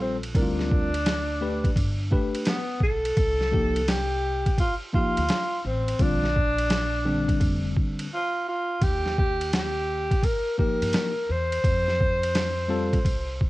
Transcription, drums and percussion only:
0.23 ride
0.35 kick, ride
0.59 snare
0.71 kick
0.94 ride
1.06 snare, hi-hat pedal, ride
1.64 kick, ride
1.76 kick, ride
2.12 kick
2.35 ride
2.45 snare, hi-hat pedal, ride
2.80 kick
3.05 ride
3.17 kick, ride
3.41 snare
3.54 kick
3.76 ride
3.88 snare, hi-hat pedal, ride
4.46 kick, ride
4.58 kick, ride
4.94 kick
5.17 ride
5.29 snare, hi-hat pedal, ride
5.88 ride
5.99 kick, ride
6.24 snare
6.36 kick
6.58 ride
6.70 snare, hi-hat pedal, ride
7.29 kick, ride
7.40 kick, ride
7.77 kick
7.99 ride
8.82 kick, ride
9.06 snare
9.18 kick
9.41 ride
9.53 snare, hi-hat pedal, ride
10.11 kick, ride
10.23 kick, ride
10.59 kick
10.82 ride
10.93 snare, hi-hat pedal, ride
11.52 ride
11.64 kick, ride
11.88 snare
12.00 kick
12.23 ride
12.35 snare, hi-hat pedal, ride
12.93 kick, ride
13.05 kick, ride
13.41 kick

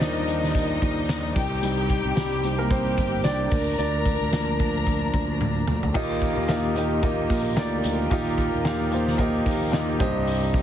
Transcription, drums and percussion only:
0.01 snare, closed hi-hat, tambourine
0.28 closed hi-hat, tambourine
0.43 snare
0.55 kick, closed hi-hat, tambourine
0.82 kick, closed hi-hat, tambourine
1.09 snare, closed hi-hat, tambourine
1.36 kick, tambourine, crash
1.63 closed hi-hat, tambourine
1.90 kick, closed hi-hat, tambourine
2.17 snare, closed hi-hat, tambourine
2.44 closed hi-hat
2.71 kick, closed hi-hat, tambourine
2.97 kick, closed hi-hat, tambourine
3.24 snare, closed hi-hat, tambourine
3.51 kick, open hi-hat, tambourine
3.78 closed hi-hat, tambourine
4.06 kick, closed hi-hat, tambourine
4.33 snare, closed hi-hat, tambourine
4.59 kick, closed hi-hat, tambourine
4.87 kick, closed hi-hat, tambourine
5.13 kick, closed hi-hat, tambourine
5.40 high tom, tambourine
5.67 mid tom, tambourine
5.83 floor tom
5.95 kick, crash, tambourine
6.22 kick, hi-hat pedal, open hi-hat, tambourine
6.48 snare, hi-hat pedal, open hi-hat, tambourine
6.76 hi-hat pedal, open hi-hat
7.03 kick, hi-hat pedal, open hi-hat, tambourine
7.30 kick, hi-hat pedal, open hi-hat, tambourine
7.56 snare, hi-hat pedal, open hi-hat, tambourine
7.84 hi-hat pedal, open hi-hat, tambourine
8.11 kick, hi-hat pedal, open hi-hat
8.38 kick, hi-hat pedal, open hi-hat, tambourine
8.65 snare, hi-hat pedal, open hi-hat, tambourine
8.92 hi-hat pedal, open hi-hat, tambourine
9.07 snare
9.19 kick, hi-hat pedal, open hi-hat, tambourine
9.46 kick, hi-hat pedal, open hi-hat, tambourine
9.73 snare, hi-hat pedal, open hi-hat, tambourine
10.00 kick, hi-hat pedal, open hi-hat, tambourine
10.27 hi-hat pedal, open hi-hat, tambourine
10.54 kick, hi-hat pedal, open hi-hat, tambourine

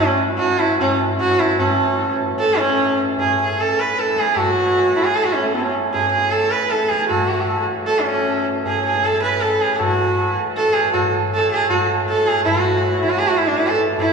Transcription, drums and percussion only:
0.39 tabla tin, tabla ge
0.59 tabla na
0.79 tabla na, tabla ge
1.19 tabla tin, tabla ge
1.40 tabla na
1.59 tabla na, tabla ge
1.99 tabla na
2.38 tabla tin
2.78 tabla na
3.17 tabla tin, tabla ge
3.58 tabla na
3.97 tabla te
4.06 tabla te
4.16 tabla ke
4.26 tabla te
4.36 tabla na, tabla ge
4.75 tabla na
4.96 tabla na
5.16 tabla tin
5.55 tabla na
5.75 tabla na
5.94 tabla tin, tabla ge
6.33 tabla na
6.72 tabla te
6.82 tabla te
6.91 tabla ke
7.01 tabla te
7.10 tabla na, tabla ge
7.49 tabla na
7.88 tabla tin
8.27 tabla na
8.65 tabla tin, tabla ge
8.84 tabla na
8.94 tabla ke
9.03 tabla na, tabla ge
9.22 tabla te
9.41 tabla na
9.80 tabla na, tabla ge
10.18 tabla na
10.57 tabla te
10.76 tabla na
10.94 tabla na, tabla ge
11.32 tabla te
11.51 tabla na
11.70 tabla na, tabla ge
12.09 tabla te
12.27 tabla na
12.46 tabla na, tabla ge
12.84 tabla te
12.95 tabla te
13.04 tabla ke
13.13 tabla te
13.22 tabla tin
13.59 tabla te
13.79 tabla te
13.98 tabla tin, tabla ge

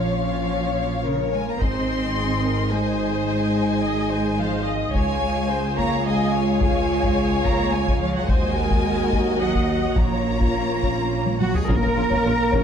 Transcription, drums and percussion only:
1.61 taiko
4.95 taiko
5.78 taiko
6.61 taiko
7.03 taiko
7.46 taiko
7.87 taiko
8.29 taiko
8.71 taiko
9.13 taiko
9.55 taiko
9.98 taiko
10.41 taiko
10.83 taiko
11.26 taiko high
11.40 taiko high
11.54 taiko low
11.69 taiko
12.11 taiko
12.53 taiko

